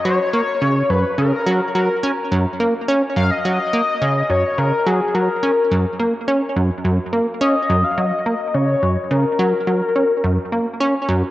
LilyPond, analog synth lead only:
\new Staff \with { instrumentName = "Analog synth lead" } { \time 4/4 \key fis \major \tempo 4 = 106 cis''4. b'8 ais'4 ais'8. r16 | r4. eis''16 dis''4.~ dis''16 cis''8 | ais'8 gis'8 ais'4. r4. | r4 dis''8. eis''16 dis''4 cis''4 |
ais'2.~ ais'8 r8 | }